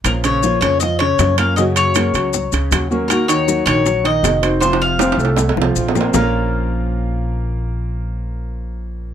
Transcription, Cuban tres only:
X:1
M:4/4
L:1/8
Q:1/4=158
K:Bbm
V:1 name="Cuban tres"
B d2 d e d2 f | e d6 z | B d2 d2 e3 | c f3 z4 |
f8- | f8 |]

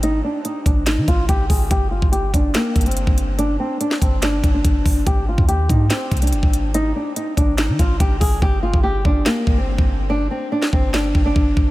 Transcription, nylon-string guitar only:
X:1
M:4/4
L:1/16
Q:1/4=143
K:Gphr
V:1 name="Nylon-string guitar"
E2 D2 E2 D2 E2 F2 G2 A2 | G2 F2 G2 D2 B,3 C4- C | D2 C2 D2 C2 D3 D4- D | G2 F2 G2 E2 C3 D4- D |
E2 D2 E2 D2 E2 F2 G2 A2 | G2 F2 G2 D2 B,3 C4- C | D2 C2 D2 C2 D3 D4- D |]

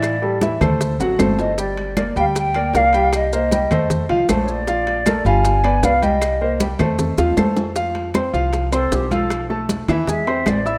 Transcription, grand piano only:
X:1
M:4/4
L:1/8
Q:1/4=156
K:Gm
V:1 name="Grand piano"
[=E,=E=e] [G,GA] [E,Ee] [A,Ac]2 [^F,^F^f] [A,Ac]2 | [G,Gg]2 [B,Bd] [G,Gg]2 [B,Bd] [B,Bd] [G,Gg]- | [G,Gg] [B,Bc] [G,Gg] [A,Ac]2 [F,Ff] [A,Ac]2 | [F,Ff]2 [A,AB] [G,Ff]2 [=B,=Bd] [B,Bd] [G,Gg]- |
[G,Gg] [B,Bc] [G,Gg] [A,Ac]2 [F,Ff] [A,Ac]2 | [K:F] [F,Ff]2 [Ccc'] [F,Ff]2 [Ccc']2 [F,Ff]- | [F,Ff] [A,Aa]2 [E,Ee] [^G,^G^g] [^B,^B^b]2 [Eee'] |]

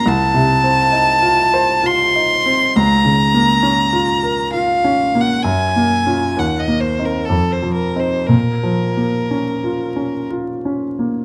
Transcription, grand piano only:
X:1
M:3/4
L:1/8
Q:1/4=65
K:Bbm
V:1 name="Grand piano"
(3C,, C, C (3E F c (3F E C | (3D,, D, B, (3D F B (3F D B, | (3G,, B, [DF] (3E,, B, [CE] (3F,, F, [CE] | (3B,, F, B, (3D F D (3F D B, |]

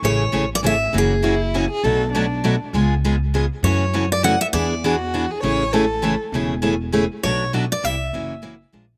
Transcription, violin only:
X:1
M:3/4
L:1/8
Q:"Swing" 1/4=200
K:A
V:1 name="Violin"
z6 | z2 E3 G | A2 D4 | z6 |
z6 | z2 F3 G | c2 A4 | z6 |
z6 | z6 |]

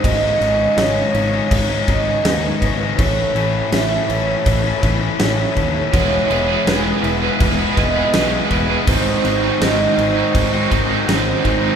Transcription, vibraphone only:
X:1
M:4/4
L:1/8
Q:1/4=82
K:E
V:1 name="Vibraphone"
d2 c c2 z B2 | c2 e c2 z c2 | c2 B B2 d B2 | ^B2 d B2 z B2 |]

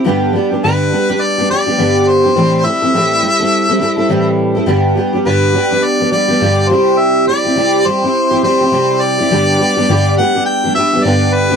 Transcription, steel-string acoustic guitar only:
X:1
M:4/4
L:1/16
Q:"Swing 16ths" 1/4=104
K:G
V:1 name="Steel-string acoustic guitar"
[G,,D,G,B,DG]2 [G,B,DG] [G,B,DG] [G,,D,G,B,DG]2 [G,B,DG] [G,B,DG]2 [G,B,DG] [G,B,DG] [G,B,DG] [G,,D,G,B,DG]3 [G,B,DG] | [A,,E,G,CEA]2 [G,CEA] [G,CEA] [A,,E,G,CEA]2 [G,CEA] [G,CEA]2 [G,CEA] [G,CEA] [G,CEA] [A,,E,G,CEA]3 [G,CEA] | [G,,D,G,B,DG]2 [G,B,DG] [G,B,DG] [G,,D,G,B,DG]2 [G,B,DG] [G,B,DG]2 [G,B,DG] [G,B,DG] [G,B,DG] [G,,D,G,B,DG]2 [C,G,CEG]2- | [C,G,CEG]2 [G,CEG] [CEG] [C,G,CEG]2 [G,CEG] [CEG]2 [CEG] [G,CEG] [CEG] [C,G,CEG]3 [CEG] |
[G,,D,G,B,DG]2 [G,B,DG] [G,B,DG] [G,,D,G,B,DG]2 [G,B,DG] [G,B,DG]2 [G,B,DG] [G,B,DG] [G,B,DG] [G,,D,G,B,DG]3 [G,B,DG] |]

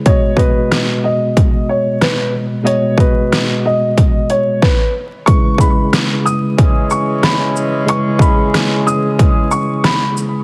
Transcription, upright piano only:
X:1
M:4/4
L:1/8
Q:"Swing 16ths" 1/4=92
K:C#m
V:1 name="Upright piano"
c B2 d2 c B z | c B2 d2 c B z | c' b2 d'2 c' b z | c' b2 d'2 c' b z |]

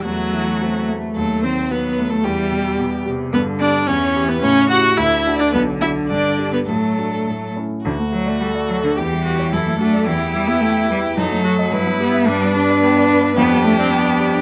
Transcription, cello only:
X:1
M:2/4
L:1/16
Q:1/4=109
K:Em
V:1 name="Cello" clef=bass
A,8 | F,4 F,4 | E,4 B,,2 C,2 | [K:D] D,4 E,4 |
C,4 D,4- | D,8 | F,6 z2 | D,2 F, A, G,2 F, D, |
E,6 A,2 | E,2 G, B, A,2 G,2 | F,6 B,2 | [K:G] G,2 D6 |
B,2 A, C B,4 |]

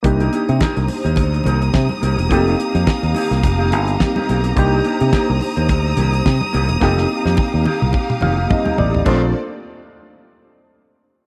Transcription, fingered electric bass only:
X:1
M:4/4
L:1/16
Q:"Swing 16ths" 1/4=106
K:Bb
V:1 name="Fingered electric bass" clef=bass
C,,2 z C, z C,, z E,, D,,2 C,,2 C, z C,, =E,,, | F,,,2 z F,, z E,, z C,, F,,,2 G,,,2 z2 _C,,2 | C,,2 z C, z C,, z E,, D,,2 C,,2 C, z C,, =E,,, | F,,,2 z F,, z E,, z C,, z2 F,,,2 z2 A,,,2 |
B,,,2 z12 z2 |]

